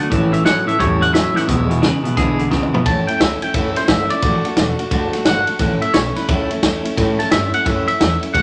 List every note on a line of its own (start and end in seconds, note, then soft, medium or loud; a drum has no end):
0.00 0.11 A3 soft
0.00 0.12 D4 medium
0.00 0.11 F#4 medium
0.00 0.11 F#5 loud
0.10 0.51 A1 loud
0.10 0.31 A2 medium
0.10 0.33 A2 medium
0.10 0.31 E3 medium
0.10 0.34 E3 medium
0.10 0.34 A3 medium
0.10 0.34 C#4 medium
0.10 0.32 E4 medium
0.10 kick loud
0.10 closed hi-hat medium
0.33 0.43 A2 medium
0.33 0.44 E3 medium
0.33 0.46 A3 soft
0.33 0.46 C#4 soft
0.33 0.46 E4 medium
0.33 0.45 E5 loud
0.33 closed hi-hat medium
0.44 0.65 A2 medium
0.44 0.68 E3 medium
0.44 0.65 F#3 medium
0.44 0.68 A3 medium
0.44 0.67 C#4 medium
0.44 0.66 E4 medium
0.44 0.67 F#5 loud
0.44 snare loud
0.44 closed hi-hat medium
0.67 0.77 A2 medium
0.67 0.78 E3 medium
0.67 0.80 A3 soft
0.67 0.80 C#4 soft
0.67 0.80 E4 medium
0.67 0.80 E5 medium
0.67 muted upright bass stroke medium
0.67 closed hi-hat medium
0.79 1.20 E2 medium
0.79 0.99 A2 medium
0.79 1.02 A2 medium
0.79 1.02 E3 medium
0.79 0.99 G3 medium
0.79 1.03 A3 medium
0.79 1.03 C#4 medium
0.79 1.01 E4 medium
0.79 1.02 C#5 medium
0.79 kick loud
0.79 closed hi-hat medium
1.01 1.12 A2 medium
1.01 1.13 G3 medium
1.01 1.16 C#4 soft
1.01 1.14 E4 medium
1.01 1.14 F#5 medium
1.01 closed hi-hat medium
1.06 1.15 A3 soft
1.13 1.33 A2 medium
1.13 1.37 E3 medium
1.13 1.34 F#3 loud
1.13 1.37 A3 medium
1.13 1.36 E5 loud
1.13 snare loud
1.13 closed hi-hat medium
1.17 1.37 C#4 medium
1.17 1.35 E4 medium
1.34 1.46 A2 medium
1.34 1.47 E3 medium
1.34 1.49 C#4 medium
1.34 1.49 E4 medium
1.34 1.48 F#5 loud
1.34 muted upright bass stroke medium
1.34 snare soft
1.34 closed hi-hat medium
1.40 1.50 A3 soft
1.47 1.88 E1 medium
1.47 1.67 E2 medium
1.47 1.71 E2 medium
1.47 1.68 B2 medium
1.47 1.71 B2 medium
1.47 1.71 E3 medium
1.47 1.72 G#3 medium
1.47 1.70 E5 loud
1.47 kick loud
1.47 closed hi-hat medium
1.51 1.70 B3 medium
1.51 1.69 E4 medium
1.69 1.80 E2 medium
1.69 1.81 B2 medium
1.69 1.83 G#3 soft
1.69 1.83 B3 medium
1.69 1.83 E4 medium
1.69 1.82 C#5 medium
1.69 closed hi-hat medium
1.74 1.82 E3 soft
1.82 2.02 E2 medium
1.82 2.02 C#3 medium
1.82 2.05 E3 medium
1.82 2.05 G#3 medium
1.82 2.05 B3 medium
1.82 2.18 B4 medium
1.82 snare loud
1.82 closed hi-hat medium
1.86 2.03 E4 medium
2.03 2.15 E2 medium
2.03 2.15 B2 medium
2.03 2.17 G#3 soft
2.03 2.18 B3 soft
2.03 2.17 E4 medium
2.03 muted upright bass stroke medium
2.03 closed hi-hat medium
2.08 2.17 E3 soft
2.16 2.57 B1 medium
2.16 2.36 E2 medium
2.16 2.39 E2 medium
2.16 2.39 B2 medium
2.16 2.37 D3 medium
2.16 2.40 E3 medium
2.16 2.40 G#3 medium
2.16 2.38 B3 medium
2.16 2.37 E4 medium
2.16 2.49 G#4 medium
2.16 kick loud
2.16 closed hi-hat medium
2.39 2.49 E2 medium
2.39 2.50 D3 medium
2.39 2.50 E3 soft
2.39 2.51 G#3 soft
2.39 2.52 B3 medium
2.39 2.51 E4 medium
2.39 closed hi-hat medium
2.50 2.71 E2 medium
2.50 2.71 C#3 medium
2.50 2.73 E3 medium
2.50 2.74 G#3 medium
2.50 2.74 B3 medium
2.50 2.73 E4 medium
2.50 kick medium
2.50 snare medium
2.63 mid tom medium
2.73 2.84 E2 medium
2.73 2.84 B2 medium
2.73 2.85 E3 medium
2.73 2.87 G#3 medium
2.73 2.86 B3 medium
2.73 2.86 E4 medium
2.73 muted upright bass stroke medium
2.73 floor tom loud
2.86 3.07 A1 medium
2.86 3.08 A2 medium
2.86 3.08 E3 medium
2.86 3.08 A3 medium
2.86 3.08 C#4 medium
2.86 3.06 E4 medium
2.86 3.07 A5 medium
2.86 kick loud
2.86 ride medium
3.07 3.20 A3 soft
3.07 3.20 C#4 soft
3.07 3.20 E4 medium
3.07 3.21 G5 medium
3.07 muted upright bass stroke medium
3.07 ride medium
3.20 3.41 C#2 medium
3.20 3.42 E3 medium
3.20 3.42 A3 medium
3.20 3.42 C#4 medium
3.20 3.40 E4 medium
3.20 3.42 E5 medium
3.20 snare loud
3.20 ride medium
3.41 3.54 A3 soft
3.41 3.55 C#4 soft
3.41 3.54 E4 medium
3.41 3.54 G5 medium
3.41 muted upright bass stroke medium
3.41 ride medium
3.54 3.75 F#1 medium
3.54 3.76 A2 medium
3.54 3.76 E3 medium
3.54 3.77 A3 medium
3.54 3.77 C#4 medium
3.54 3.76 E4 medium
3.54 3.76 E5 medium
3.54 kick loud
3.54 ride medium
3.76 3.89 A3 soft
3.76 3.89 C#4 soft
3.76 3.89 E4 medium
3.76 3.88 C5 medium
3.76 muted upright bass stroke medium
3.76 snare soft
3.76 ride medium
3.88 4.10 G1 loud
3.88 4.11 E3 medium
3.88 4.11 A3 medium
3.88 4.11 C#4 medium
3.88 4.10 E4 medium
3.88 4.10 E5 medium
3.88 kick medium
3.88 snare loud
3.88 ride medium
4.10 4.22 A3 soft
4.10 4.24 C#4 medium
4.10 4.23 E4 medium
4.10 5.10 D5 medium
4.10 muted upright bass stroke medium
4.10 ride medium
4.22 4.44 A1 medium
4.22 4.45 D3 medium
4.22 4.45 A3 medium
4.22 4.45 D4 medium
4.22 4.44 F#4 medium
4.22 kick loud
4.22 ride medium
4.45 4.56 A3 soft
4.45 4.57 D4 medium
4.45 4.57 F#4 medium
4.45 muted upright bass stroke medium
4.45 ride medium
4.57 4.78 E1 medium
4.57 4.79 D3 medium
4.57 4.79 A3 medium
4.57 4.79 D4 medium
4.57 4.77 F#4 medium
4.57 snare loud
4.57 ride medium
4.78 4.90 A3 soft
4.78 4.91 D4 medium
4.78 4.91 F#4 medium
4.78 ride medium
4.91 5.13 F#1 medium
4.91 5.13 D3 medium
4.91 5.13 A3 medium
4.91 5.13 D4 loud
4.91 5.12 F#4 loud
4.91 kick loud
4.91 ride medium
5.13 5.26 A3 medium
5.13 5.26 D4 medium
5.13 5.25 F#4 medium
5.13 muted upright bass stroke medium
5.13 snare soft
5.13 ride medium
5.25 5.47 G1 loud
5.25 5.47 D3 medium
5.25 5.48 A3 medium
5.25 5.48 D4 medium
5.25 5.46 F#4 medium
5.25 5.81 F#5 loud
5.25 snare loud
5.25 ride medium
5.47 5.59 A3 soft
5.47 5.60 D4 soft
5.47 5.60 F#4 medium
5.47 muted upright bass stroke medium
5.47 ride medium
5.59 5.81 A1 medium
5.59 5.81 A2 medium
5.59 5.82 E3 medium
5.59 5.82 A3 medium
5.59 5.81 C#4 medium
5.59 5.79 E4 medium
5.59 kick loud
5.59 snare soft
5.59 ride medium
5.80 5.94 A3 soft
5.80 5.94 C#4 medium
5.80 5.93 E4 medium
5.80 5.94 E5 medium
5.80 muted upright bass stroke medium
5.80 ride medium
5.94 6.15 B1 loud
5.94 6.16 E3 medium
5.94 6.17 A3 medium
5.94 6.16 C#4 medium
5.94 6.15 E4 medium
5.94 6.16 C#5 medium
5.94 snare loud
5.94 ride medium
6.16 6.28 A3 soft
6.16 6.29 C#4 soft
6.16 6.28 E4 medium
6.16 6.28 B4 medium
6.16 muted upright bass stroke medium
6.16 snare soft
6.16 ride medium
6.28 6.50 C#2 medium
6.28 6.51 A2 medium
6.28 6.51 E3 medium
6.28 6.51 A3 medium
6.28 6.50 C#4 medium
6.28 6.49 E4 medium
6.28 6.95 A4 medium
6.28 kick loud
6.28 ride medium
6.50 6.62 A3 soft
6.50 6.62 C#4 soft
6.50 6.63 E4 medium
6.50 muted upright bass stroke medium
6.50 ride medium
6.61 6.83 E2 medium
6.61 6.84 E3 medium
6.61 6.85 A3 medium
6.61 6.83 C#4 medium
6.61 6.82 E4 medium
6.61 kick medium
6.61 snare loud
6.61 ride medium
6.83 6.96 A3 medium
6.83 6.97 C#4 medium
6.83 6.96 E4 medium
6.83 muted upright bass stroke soft
6.83 ride medium
6.96 7.19 A2 medium
6.96 7.19 E3 loud
6.96 7.19 A3 loud
6.96 7.18 C#4 medium
6.96 7.17 E4 loud
6.96 kick loud
6.96 snare soft
6.96 ride medium
7.18 7.30 A3 soft
7.18 7.31 C#4 soft
7.18 7.31 E4 medium
7.18 7.31 A5 loud
7.18 muted upright bass stroke medium
7.18 snare soft
7.18 ride medium
7.30 7.53 G2 loud
7.30 7.53 E3 medium
7.30 7.53 A3 medium
7.30 7.53 C#4 medium
7.30 7.51 E4 medium
7.30 7.53 E5 medium
7.30 snare loud
7.30 ride medium
7.52 7.64 A3 soft
7.52 7.64 C#4 soft
7.52 7.65 E4 medium
7.52 7.66 F#5 medium
7.52 muted upright bass stroke medium
7.52 ride medium
7.64 7.87 F#2 medium
7.64 7.87 A2 medium
7.64 7.87 E3 medium
7.64 7.87 A3 medium
7.64 7.87 C#4 medium
7.64 7.85 E4 medium
7.64 7.86 E5 medium
7.64 kick loud
7.64 ride medium
7.86 7.98 A3 soft
7.86 7.99 C#4 medium
7.86 7.99 E4 medium
7.86 8.21 E5 loud
7.86 ride medium
7.98 8.22 E2 medium
7.98 8.21 E3 medium
7.98 8.21 A3 medium
7.98 8.21 C#4 medium
7.98 8.20 E4 medium
7.98 snare loud
7.98 ride medium
8.21 8.34 A3 soft
8.21 8.34 C#4 soft
8.21 8.34 E4 medium
8.21 muted upright bass stroke medium
8.21 ride medium
8.34 8.42 D2 medium
8.34 8.42 D3 medium
8.34 8.42 A3 medium
8.34 8.42 D4 medium
8.34 8.42 F#4 medium
8.34 8.42 F#5 loud
8.34 kick loud
8.34 ride medium